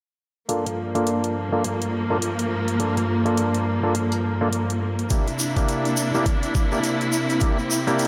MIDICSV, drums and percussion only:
0, 0, Header, 1, 2, 480
1, 0, Start_track
1, 0, Tempo, 576923
1, 409, Time_signature, 4, 2, 24, 8
1, 6720, End_track
2, 0, Start_track
2, 0, Title_t, "Drums"
2, 408, Note_on_c, 9, 42, 72
2, 491, Note_off_c, 9, 42, 0
2, 553, Note_on_c, 9, 42, 47
2, 636, Note_off_c, 9, 42, 0
2, 793, Note_on_c, 9, 42, 34
2, 876, Note_off_c, 9, 42, 0
2, 888, Note_on_c, 9, 42, 75
2, 971, Note_off_c, 9, 42, 0
2, 1031, Note_on_c, 9, 42, 48
2, 1114, Note_off_c, 9, 42, 0
2, 1368, Note_on_c, 9, 42, 72
2, 1451, Note_off_c, 9, 42, 0
2, 1512, Note_on_c, 9, 42, 50
2, 1595, Note_off_c, 9, 42, 0
2, 1848, Note_on_c, 9, 42, 77
2, 1931, Note_off_c, 9, 42, 0
2, 1989, Note_on_c, 9, 42, 52
2, 2072, Note_off_c, 9, 42, 0
2, 2230, Note_on_c, 9, 42, 36
2, 2313, Note_off_c, 9, 42, 0
2, 2328, Note_on_c, 9, 42, 74
2, 2411, Note_off_c, 9, 42, 0
2, 2473, Note_on_c, 9, 42, 48
2, 2556, Note_off_c, 9, 42, 0
2, 2711, Note_on_c, 9, 42, 36
2, 2794, Note_off_c, 9, 42, 0
2, 2808, Note_on_c, 9, 42, 75
2, 2891, Note_off_c, 9, 42, 0
2, 2949, Note_on_c, 9, 42, 48
2, 3032, Note_off_c, 9, 42, 0
2, 3285, Note_on_c, 9, 42, 74
2, 3368, Note_off_c, 9, 42, 0
2, 3428, Note_on_c, 9, 42, 48
2, 3511, Note_off_c, 9, 42, 0
2, 3765, Note_on_c, 9, 42, 73
2, 3849, Note_off_c, 9, 42, 0
2, 3911, Note_on_c, 9, 42, 54
2, 3994, Note_off_c, 9, 42, 0
2, 4151, Note_on_c, 9, 42, 36
2, 4234, Note_off_c, 9, 42, 0
2, 4243, Note_on_c, 9, 82, 50
2, 4247, Note_on_c, 9, 42, 73
2, 4249, Note_on_c, 9, 36, 116
2, 4327, Note_off_c, 9, 82, 0
2, 4330, Note_off_c, 9, 42, 0
2, 4332, Note_off_c, 9, 36, 0
2, 4387, Note_on_c, 9, 82, 27
2, 4389, Note_on_c, 9, 42, 46
2, 4471, Note_off_c, 9, 82, 0
2, 4473, Note_off_c, 9, 42, 0
2, 4484, Note_on_c, 9, 82, 90
2, 4567, Note_off_c, 9, 82, 0
2, 4630, Note_on_c, 9, 42, 34
2, 4632, Note_on_c, 9, 36, 59
2, 4632, Note_on_c, 9, 82, 39
2, 4713, Note_off_c, 9, 42, 0
2, 4715, Note_off_c, 9, 36, 0
2, 4715, Note_off_c, 9, 82, 0
2, 4730, Note_on_c, 9, 42, 75
2, 4732, Note_on_c, 9, 82, 48
2, 4813, Note_off_c, 9, 42, 0
2, 4816, Note_off_c, 9, 82, 0
2, 4870, Note_on_c, 9, 42, 50
2, 4879, Note_on_c, 9, 82, 25
2, 4953, Note_off_c, 9, 42, 0
2, 4963, Note_off_c, 9, 82, 0
2, 4965, Note_on_c, 9, 82, 88
2, 5048, Note_off_c, 9, 82, 0
2, 5111, Note_on_c, 9, 82, 33
2, 5195, Note_off_c, 9, 82, 0
2, 5208, Note_on_c, 9, 82, 48
2, 5209, Note_on_c, 9, 36, 103
2, 5209, Note_on_c, 9, 42, 69
2, 5291, Note_off_c, 9, 82, 0
2, 5292, Note_off_c, 9, 36, 0
2, 5292, Note_off_c, 9, 42, 0
2, 5349, Note_on_c, 9, 82, 26
2, 5350, Note_on_c, 9, 42, 49
2, 5432, Note_off_c, 9, 82, 0
2, 5433, Note_off_c, 9, 42, 0
2, 5449, Note_on_c, 9, 82, 86
2, 5450, Note_on_c, 9, 36, 102
2, 5532, Note_off_c, 9, 82, 0
2, 5533, Note_off_c, 9, 36, 0
2, 5590, Note_on_c, 9, 82, 36
2, 5673, Note_off_c, 9, 82, 0
2, 5687, Note_on_c, 9, 42, 76
2, 5688, Note_on_c, 9, 82, 55
2, 5770, Note_off_c, 9, 42, 0
2, 5771, Note_off_c, 9, 82, 0
2, 5833, Note_on_c, 9, 42, 51
2, 5834, Note_on_c, 9, 82, 23
2, 5916, Note_off_c, 9, 42, 0
2, 5917, Note_off_c, 9, 82, 0
2, 5926, Note_on_c, 9, 82, 84
2, 6010, Note_off_c, 9, 82, 0
2, 6069, Note_on_c, 9, 82, 37
2, 6073, Note_on_c, 9, 42, 38
2, 6152, Note_off_c, 9, 82, 0
2, 6156, Note_off_c, 9, 42, 0
2, 6160, Note_on_c, 9, 82, 50
2, 6168, Note_on_c, 9, 42, 73
2, 6170, Note_on_c, 9, 36, 119
2, 6243, Note_off_c, 9, 82, 0
2, 6251, Note_off_c, 9, 42, 0
2, 6253, Note_off_c, 9, 36, 0
2, 6311, Note_on_c, 9, 82, 25
2, 6394, Note_off_c, 9, 82, 0
2, 6412, Note_on_c, 9, 82, 91
2, 6495, Note_off_c, 9, 82, 0
2, 6550, Note_on_c, 9, 82, 41
2, 6552, Note_on_c, 9, 42, 33
2, 6634, Note_off_c, 9, 82, 0
2, 6636, Note_off_c, 9, 42, 0
2, 6646, Note_on_c, 9, 82, 57
2, 6650, Note_on_c, 9, 42, 68
2, 6720, Note_off_c, 9, 42, 0
2, 6720, Note_off_c, 9, 82, 0
2, 6720, End_track
0, 0, End_of_file